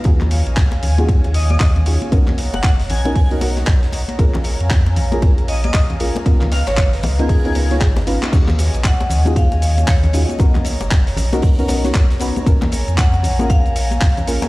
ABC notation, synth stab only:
X:1
M:4/4
L:1/16
Q:"Swing 16ths" 1/4=116
K:Ebm
V:1 name="Synth stab"
[DEFGA]6- [DEFGA] [DEFGA]6- [DEFGA] [DEFGA]2 | [=B,^C^D^F^A]2 z4 z [B,CDFA]2 [B,CDFA] [B,CDFA]2 z4 | [B,DFAB]6- [B,DFAB] [B,DFAB]6- [B,DFAB] [B,DFAB]2 | [CDEFB]2 z4 z [CDEFB]2 [CDEFB] [CDEFB] [CDEFd] z2 [CDEFc]2 |
[DEGA]6- [DEGA] [DEFGA]6- [DEFGA] [DEFGA]2 | [=B,^C^D^F^A]2 z4 z [B,CDFA]2 [B,CDFA] [B,CDFA] [B,CDF^c] z2 [B,CDF=B]2 | [F,B,DAB]6- [F,B,DAB] [B,DFAB]6- [B,DFAB] [B,DFAB]2 |]